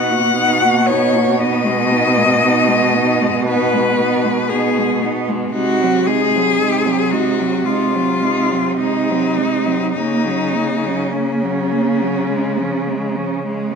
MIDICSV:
0, 0, Header, 1, 5, 480
1, 0, Start_track
1, 0, Tempo, 1038062
1, 652, Time_signature, 4, 2, 24, 8
1, 3533, Tempo, 1132075
1, 4013, Tempo, 1162791
1, 6068, End_track
2, 0, Start_track
2, 0, Title_t, "Cello"
2, 0, Program_c, 0, 42
2, 0, Note_on_c, 0, 78, 83
2, 399, Note_on_c, 0, 73, 74
2, 406, Note_off_c, 0, 78, 0
2, 648, Note_on_c, 0, 75, 79
2, 654, Note_off_c, 0, 73, 0
2, 1603, Note_off_c, 0, 75, 0
2, 1607, Note_on_c, 0, 71, 79
2, 2077, Note_on_c, 0, 68, 68
2, 2084, Note_off_c, 0, 71, 0
2, 2319, Note_off_c, 0, 68, 0
2, 2559, Note_on_c, 0, 66, 72
2, 2801, Note_on_c, 0, 68, 77
2, 2808, Note_off_c, 0, 66, 0
2, 3287, Note_on_c, 0, 66, 70
2, 3294, Note_off_c, 0, 68, 0
2, 3540, Note_on_c, 0, 65, 69
2, 3546, Note_off_c, 0, 66, 0
2, 4015, Note_off_c, 0, 65, 0
2, 4017, Note_on_c, 0, 63, 69
2, 4486, Note_off_c, 0, 63, 0
2, 4493, Note_on_c, 0, 63, 70
2, 4982, Note_on_c, 0, 61, 56
2, 4989, Note_off_c, 0, 63, 0
2, 5938, Note_off_c, 0, 61, 0
2, 6068, End_track
3, 0, Start_track
3, 0, Title_t, "Cello"
3, 0, Program_c, 1, 42
3, 0, Note_on_c, 1, 63, 49
3, 52, Note_on_c, 1, 66, 50
3, 59, Note_off_c, 1, 63, 0
3, 164, Note_off_c, 1, 66, 0
3, 167, Note_on_c, 1, 63, 50
3, 285, Note_on_c, 1, 66, 48
3, 292, Note_off_c, 1, 63, 0
3, 416, Note_on_c, 1, 63, 49
3, 423, Note_off_c, 1, 66, 0
3, 535, Note_on_c, 1, 66, 51
3, 542, Note_off_c, 1, 63, 0
3, 646, Note_off_c, 1, 66, 0
3, 649, Note_on_c, 1, 63, 54
3, 767, Note_on_c, 1, 59, 48
3, 774, Note_off_c, 1, 63, 0
3, 882, Note_on_c, 1, 63, 46
3, 888, Note_off_c, 1, 59, 0
3, 1003, Note_on_c, 1, 59, 50
3, 1010, Note_off_c, 1, 63, 0
3, 1120, Note_off_c, 1, 59, 0
3, 1123, Note_on_c, 1, 63, 53
3, 1243, Note_on_c, 1, 59, 47
3, 1250, Note_off_c, 1, 63, 0
3, 1366, Note_on_c, 1, 63, 50
3, 1373, Note_off_c, 1, 59, 0
3, 1495, Note_on_c, 1, 59, 48
3, 1502, Note_off_c, 1, 63, 0
3, 1608, Note_off_c, 1, 59, 0
3, 1611, Note_on_c, 1, 63, 53
3, 1737, Note_on_c, 1, 59, 45
3, 1744, Note_off_c, 1, 63, 0
3, 1851, Note_on_c, 1, 63, 48
3, 1858, Note_off_c, 1, 59, 0
3, 1974, Note_on_c, 1, 59, 46
3, 1981, Note_off_c, 1, 63, 0
3, 2089, Note_off_c, 1, 59, 0
3, 2091, Note_on_c, 1, 63, 49
3, 2206, Note_on_c, 1, 59, 49
3, 2213, Note_off_c, 1, 63, 0
3, 2332, Note_on_c, 1, 63, 50
3, 2339, Note_off_c, 1, 59, 0
3, 2453, Note_on_c, 1, 59, 46
3, 2460, Note_off_c, 1, 63, 0
3, 2565, Note_off_c, 1, 59, 0
3, 2568, Note_on_c, 1, 63, 51
3, 2694, Note_on_c, 1, 60, 44
3, 2701, Note_off_c, 1, 63, 0
3, 2806, Note_on_c, 1, 63, 47
3, 2813, Note_off_c, 1, 60, 0
3, 2936, Note_on_c, 1, 60, 44
3, 2943, Note_off_c, 1, 63, 0
3, 3048, Note_off_c, 1, 60, 0
3, 3050, Note_on_c, 1, 63, 45
3, 3166, Note_on_c, 1, 60, 43
3, 3173, Note_off_c, 1, 63, 0
3, 3296, Note_on_c, 1, 63, 44
3, 3303, Note_off_c, 1, 60, 0
3, 3415, Note_on_c, 1, 60, 45
3, 3422, Note_off_c, 1, 63, 0
3, 3537, Note_off_c, 1, 60, 0
3, 3549, Note_on_c, 1, 63, 47
3, 3663, Note_on_c, 1, 60, 39
3, 3669, Note_off_c, 1, 63, 0
3, 3781, Note_on_c, 1, 63, 42
3, 3787, Note_off_c, 1, 60, 0
3, 3899, Note_on_c, 1, 60, 42
3, 3906, Note_off_c, 1, 63, 0
3, 4018, Note_off_c, 1, 60, 0
3, 4023, Note_on_c, 1, 63, 46
3, 4150, Note_on_c, 1, 60, 40
3, 4157, Note_off_c, 1, 63, 0
3, 4262, Note_on_c, 1, 63, 44
3, 4269, Note_off_c, 1, 60, 0
3, 4384, Note_on_c, 1, 60, 39
3, 4390, Note_off_c, 1, 63, 0
3, 4495, Note_off_c, 1, 60, 0
3, 4498, Note_on_c, 1, 58, 45
3, 4632, Note_on_c, 1, 61, 39
3, 4638, Note_off_c, 1, 58, 0
3, 4750, Note_on_c, 1, 58, 41
3, 4756, Note_off_c, 1, 61, 0
3, 4870, Note_on_c, 1, 61, 41
3, 4876, Note_off_c, 1, 58, 0
3, 4981, Note_off_c, 1, 61, 0
3, 4984, Note_on_c, 1, 58, 44
3, 5111, Note_on_c, 1, 61, 39
3, 5118, Note_off_c, 1, 58, 0
3, 5234, Note_on_c, 1, 58, 39
3, 5240, Note_off_c, 1, 61, 0
3, 5350, Note_on_c, 1, 61, 39
3, 5356, Note_off_c, 1, 58, 0
3, 5467, Note_off_c, 1, 61, 0
3, 5471, Note_on_c, 1, 56, 41
3, 5592, Note_on_c, 1, 61, 36
3, 5598, Note_off_c, 1, 56, 0
3, 5707, Note_on_c, 1, 56, 40
3, 5713, Note_off_c, 1, 61, 0
3, 5825, Note_on_c, 1, 61, 38
3, 5831, Note_off_c, 1, 56, 0
3, 5937, Note_off_c, 1, 61, 0
3, 5939, Note_on_c, 1, 56, 42
3, 6054, Note_on_c, 1, 61, 41
3, 6060, Note_off_c, 1, 56, 0
3, 6068, Note_off_c, 1, 61, 0
3, 6068, End_track
4, 0, Start_track
4, 0, Title_t, "Cello"
4, 0, Program_c, 2, 42
4, 0, Note_on_c, 2, 59, 52
4, 47, Note_on_c, 2, 58, 49
4, 54, Note_off_c, 2, 59, 0
4, 169, Note_off_c, 2, 58, 0
4, 174, Note_on_c, 2, 59, 47
4, 291, Note_on_c, 2, 58, 51
4, 298, Note_off_c, 2, 59, 0
4, 411, Note_on_c, 2, 59, 48
4, 418, Note_off_c, 2, 58, 0
4, 526, Note_on_c, 2, 58, 47
4, 533, Note_off_c, 2, 59, 0
4, 642, Note_off_c, 2, 58, 0
4, 645, Note_on_c, 2, 59, 54
4, 762, Note_on_c, 2, 56, 48
4, 769, Note_off_c, 2, 59, 0
4, 880, Note_on_c, 2, 59, 52
4, 887, Note_off_c, 2, 56, 0
4, 1001, Note_on_c, 2, 56, 49
4, 1008, Note_off_c, 2, 59, 0
4, 1114, Note_off_c, 2, 56, 0
4, 1117, Note_on_c, 2, 59, 49
4, 1236, Note_on_c, 2, 56, 52
4, 1243, Note_off_c, 2, 59, 0
4, 1359, Note_on_c, 2, 59, 49
4, 1366, Note_off_c, 2, 56, 0
4, 1484, Note_on_c, 2, 56, 49
4, 1491, Note_off_c, 2, 59, 0
4, 1601, Note_off_c, 2, 56, 0
4, 1604, Note_on_c, 2, 59, 50
4, 1726, Note_on_c, 2, 56, 51
4, 1733, Note_off_c, 2, 59, 0
4, 1846, Note_on_c, 2, 59, 50
4, 1853, Note_off_c, 2, 56, 0
4, 1964, Note_on_c, 2, 56, 48
4, 1971, Note_off_c, 2, 59, 0
4, 2084, Note_off_c, 2, 56, 0
4, 2087, Note_on_c, 2, 59, 48
4, 2208, Note_on_c, 2, 56, 46
4, 2215, Note_off_c, 2, 59, 0
4, 2321, Note_on_c, 2, 59, 46
4, 2328, Note_off_c, 2, 56, 0
4, 2444, Note_on_c, 2, 56, 45
4, 2451, Note_off_c, 2, 59, 0
4, 2561, Note_off_c, 2, 56, 0
4, 2564, Note_on_c, 2, 56, 50
4, 2690, Note_on_c, 2, 54, 45
4, 2697, Note_off_c, 2, 56, 0
4, 2805, Note_on_c, 2, 56, 47
4, 2812, Note_off_c, 2, 54, 0
4, 2935, Note_on_c, 2, 54, 44
4, 2942, Note_off_c, 2, 56, 0
4, 3049, Note_off_c, 2, 54, 0
4, 3051, Note_on_c, 2, 56, 48
4, 3170, Note_on_c, 2, 54, 45
4, 3177, Note_off_c, 2, 56, 0
4, 3294, Note_on_c, 2, 56, 46
4, 3301, Note_off_c, 2, 54, 0
4, 3418, Note_on_c, 2, 54, 41
4, 3425, Note_off_c, 2, 56, 0
4, 3533, Note_off_c, 2, 54, 0
4, 3535, Note_on_c, 2, 56, 46
4, 3663, Note_on_c, 2, 54, 42
4, 3669, Note_off_c, 2, 56, 0
4, 3774, Note_on_c, 2, 56, 45
4, 3781, Note_off_c, 2, 54, 0
4, 3901, Note_on_c, 2, 54, 42
4, 3907, Note_off_c, 2, 56, 0
4, 4018, Note_off_c, 2, 54, 0
4, 4026, Note_on_c, 2, 56, 42
4, 4146, Note_on_c, 2, 54, 40
4, 4152, Note_off_c, 2, 56, 0
4, 4261, Note_on_c, 2, 56, 39
4, 4267, Note_off_c, 2, 54, 0
4, 4375, Note_on_c, 2, 54, 38
4, 4381, Note_off_c, 2, 56, 0
4, 4496, Note_off_c, 2, 54, 0
4, 4504, Note_on_c, 2, 58, 44
4, 4621, Note_on_c, 2, 54, 40
4, 4627, Note_off_c, 2, 58, 0
4, 4744, Note_on_c, 2, 58, 41
4, 4750, Note_off_c, 2, 54, 0
4, 4869, Note_on_c, 2, 54, 41
4, 4875, Note_off_c, 2, 58, 0
4, 4986, Note_off_c, 2, 54, 0
4, 4989, Note_on_c, 2, 58, 43
4, 5107, Note_on_c, 2, 54, 44
4, 5114, Note_off_c, 2, 58, 0
4, 5228, Note_on_c, 2, 58, 42
4, 5234, Note_off_c, 2, 54, 0
4, 5347, Note_on_c, 2, 54, 37
4, 5353, Note_off_c, 2, 58, 0
4, 5465, Note_off_c, 2, 54, 0
4, 5469, Note_on_c, 2, 56, 42
4, 5590, Note_on_c, 2, 53, 43
4, 5596, Note_off_c, 2, 56, 0
4, 5709, Note_on_c, 2, 56, 41
4, 5716, Note_off_c, 2, 53, 0
4, 5823, Note_on_c, 2, 53, 39
4, 5829, Note_off_c, 2, 56, 0
4, 5939, Note_off_c, 2, 53, 0
4, 5943, Note_on_c, 2, 56, 42
4, 6064, Note_off_c, 2, 56, 0
4, 6068, End_track
5, 0, Start_track
5, 0, Title_t, "Cello"
5, 0, Program_c, 3, 42
5, 0, Note_on_c, 3, 47, 68
5, 2561, Note_off_c, 3, 47, 0
5, 2571, Note_on_c, 3, 48, 59
5, 4499, Note_on_c, 3, 49, 53
5, 4505, Note_off_c, 3, 48, 0
5, 6068, Note_off_c, 3, 49, 0
5, 6068, End_track
0, 0, End_of_file